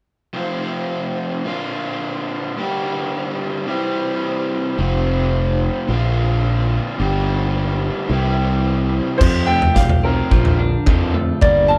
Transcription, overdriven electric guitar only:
0.33 1.44 F2 medium
0.33 1.44 C3 medium
0.33 1.44 F3 medium
0.33 1.45 A3 medium
0.33 1.45 C4 loud
0.33 1.45 F4 loud
1.44 2.54 A#2 medium
1.44 2.55 D3 medium
1.44 2.55 A#3 medium
1.44 2.56 D4 medium
1.44 2.56 F4 medium
2.56 3.66 G2 medium
2.56 3.66 D3 medium
2.56 3.67 G3 medium
2.56 3.67 A#3 medium
2.56 3.67 D4 medium
2.56 3.67 G4 medium
3.67 4.76 C3 medium
3.67 4.77 E3 medium
3.67 4.77 G3 medium
3.67 4.77 C4 medium
3.67 4.78 E4 medium
4.77 5.87 F2 medium
4.77 5.87 C3 medium
4.77 5.87 F3 medium
4.77 5.88 A3 medium
4.77 5.88 C4 loud
4.77 5.88 F4 medium
5.87 6.97 A#2 medium
5.87 6.97 D3 medium
5.87 6.98 A#3 medium
5.87 6.99 D4 medium
5.87 6.99 F4 loud
6.98 8.08 G2 medium
6.98 8.08 D3 loud
6.98 8.09 G3 medium
6.98 8.09 A#3 loud
6.98 8.09 D4 medium
6.98 8.10 G4 loud
8.09 9.19 C3 medium
8.09 9.19 E3 medium
8.09 9.20 G3 medium
8.09 9.20 E4 medium
8.09 9.21 G4 medium
9.20 9.46 F2 medium
9.20 9.47 C3 medium
9.20 9.47 F3 medium
9.50 9.74 F2 medium
9.50 9.74 C3 medium
9.78 10.02 F2 medium
9.78 10.02 C3 medium
10.05 10.31 F2 loud
10.05 10.31 C3 medium
10.05 10.31 F3 loud
10.33 10.58 A#2 medium
10.33 10.59 D3 medium
10.33 10.59 A#3 medium
10.60 10.85 A#2 medium
10.60 10.85 D3 medium
10.88 11.13 A#2 medium
10.88 11.13 D3 medium
10.88 11.14 A#3 medium
11.14 11.40 A#2 medium
11.14 11.40 D3 medium
11.42 11.68 G2 medium
11.42 11.69 D3 medium
11.42 11.69 G3 medium
11.70 11.78 G2 medium
11.70 11.78 D3 medium

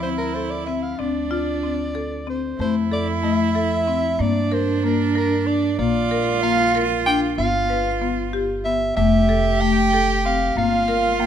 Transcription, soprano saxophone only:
0.03 0.10 C5 medium
0.18 0.35 A#4 medium
0.34 0.52 C5 medium
0.50 0.65 D5 medium
0.66 0.84 E5 medium
0.83 1.01 F5 medium
0.99 2.27 D5 medium
2.29 2.58 C5 medium
2.61 2.75 C5 medium
2.93 3.07 D5 medium
3.24 4.23 E5 loud
4.21 4.55 D5 loud
4.53 4.84 C5 medium
4.86 5.14 A#4 medium
5.17 5.48 A#4 loud
5.47 5.78 D5 medium
5.79 6.39 D5 loud
6.43 6.77 F5 loud
7.06 7.20 G5 loud
7.38 7.98 F5 loud
8.65 8.95 E5 loud
8.97 9.62 E5 loud
9.61 10.25 G5 loud
10.26 10.55 F5 loud
10.58 11.21 F5 loud
11.20 11.26 G5 loud

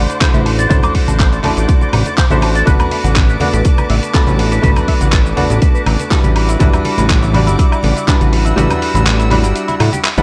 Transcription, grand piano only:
0.00 0.18 A3 medium
0.00 0.18 D4 medium
0.00 0.18 E4 medium
0.00 0.19 F#4 medium
0.00 0.19 D5 medium
0.21 0.67 A3 medium
0.21 0.67 D4 medium
0.21 0.67 E4 medium
0.21 0.68 F#4 medium
0.21 0.68 C5 medium
0.69 1.41 A3 medium
0.69 1.41 D4 medium
0.69 1.41 E4 medium
0.69 1.41 F#4 medium
0.69 1.42 C5 loud
1.43 2.14 A3 medium
1.43 2.15 D4 medium
1.43 2.15 E4 medium
1.43 2.15 F#4 medium
1.43 2.15 D5 medium
2.31 2.64 A3 medium
2.31 2.64 D4 medium
2.31 2.64 E4 medium
2.31 2.64 F#4 medium
2.31 2.64 C5 medium
2.65 3.37 A3 medium
2.65 3.37 B3 medium
2.65 3.37 D4 medium
2.65 3.38 F#4 medium
2.65 3.38 B4 loud
3.40 4.11 A3 medium
3.40 4.12 B3 medium
3.40 4.12 D4 medium
3.40 4.12 F#4 medium
3.40 4.12 D5 medium
4.14 4.60 A3 medium
4.14 4.61 B3 medium
4.14 4.61 D4 medium
4.14 4.61 F#4 medium
4.14 4.61 B4 medium
4.62 5.34 A3 medium
4.62 5.34 B3 medium
4.62 5.34 D4 medium
4.62 5.34 F#4 medium
4.62 5.35 B4 loud
5.36 6.08 A3 medium
5.36 6.08 B3 medium
5.36 6.08 D4 medium
5.36 6.08 F#4 medium
5.36 6.09 D5 medium
6.10 6.57 G3 medium
6.10 6.57 D4 medium
6.10 6.57 E4 medium
6.10 6.58 F#4 medium
6.10 6.58 B4 medium
6.59 7.31 G3 medium
6.59 7.31 D4 medium
6.59 7.31 E4 medium
6.59 7.32 F#4 medium
6.59 7.32 B4 loud
7.33 8.05 G3 medium
7.33 8.05 D4 medium
7.33 8.05 E4 medium
7.33 8.05 F#4 medium
7.33 8.06 D5 medium
8.08 8.54 G3 medium
8.08 8.54 D4 medium
8.08 8.54 E4 medium
8.08 8.54 F#4 medium
8.08 8.55 B4 medium
8.56 9.28 G3 medium
8.56 9.28 D4 medium
8.56 9.28 E4 medium
8.56 9.28 F#4 medium
8.56 9.29 B4 loud
9.30 10.02 G3 medium
9.30 10.02 D4 medium
9.30 10.02 E4 medium
9.30 10.02 F#4 medium
9.30 10.03 D5 medium
10.18 10.23 G3 medium
10.18 10.23 D4 medium
10.18 10.23 E4 medium
10.18 10.23 B4 loud
10.18 10.23 F#5 medium

